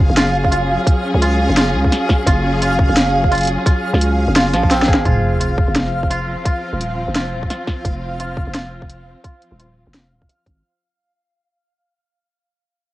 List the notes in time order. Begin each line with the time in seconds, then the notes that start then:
Already playing: F#3 C#4 F4 G#4 F5
0.10 F#1
0.17 F4, snare, closed hi-hat
0.44 kick
0.52 F4, closed hi-hat
0.87 kick, closed hi-hat
1.14 C#2
1.22 F4, closed hi-hat
1.49 F#1
1.57 F4, snare, closed hi-hat
1.74 C#2
1.84 kick
1.92 snare, closed hi-hat
2.09 kick, snare
2.26 F#1 F4, kick, closed hi-hat
2.62 F4, closed hi-hat
2.79 kick
2.89 F#1
2.97 snare, closed hi-hat
3.24 kick
3.31 F4, closed hi-hat
3.35 closed hi-hat
3.38 closed hi-hat
3.41 closed hi-hat
3.43 closed hi-hat
3.45 closed hi-hat
3.47 closed hi-hat
3.66 F4, kick, closed hi-hat
3.94 C#2, snare
4.01 closed hi-hat
4.28 F#1
4.36 F4, snare, closed hi-hat
4.53 A#1 F3, snare, closed hi-hat
4.63 kick
4.71 C4, snare, closed hi-hat
4.82 snare
4.88 G#1 G#4, kick
4.94 snare
5.05 F1 F3 C4 F4 F5, kick, closed hi-hat, sub drop
5.40 F4, closed hi-hat
5.58 kick
5.68 F1
5.76 snare, closed hi-hat
6.03 kick
6.10 F4, closed hi-hat
6.45 F4, kick, closed hi-hat
6.73 D#1
6.81 closed hi-hat
7.08 F1
7.15 F4, snare, closed hi-hat
7.33 D#1
7.43 kick
7.50 F4, snare, closed hi-hat
7.67 kick, snare
7.85 F1, kick, closed hi-hat
8.20 F4, closed hi-hat
8.37 kick
8.47 F1
8.54 F4, snare, closed hi-hat
8.82 kick
8.90 closed hi-hat
9.24 F4, kick, closed hi-hat
9.42 closed hi-hat
9.52 D#1
9.59 F4, closed hi-hat
9.87 F1
9.94 snare, closed hi-hat
10.12 D#1
10.22 kick
10.29 F5, closed hi-hat
10.46 G#1, kick, closed hi-hat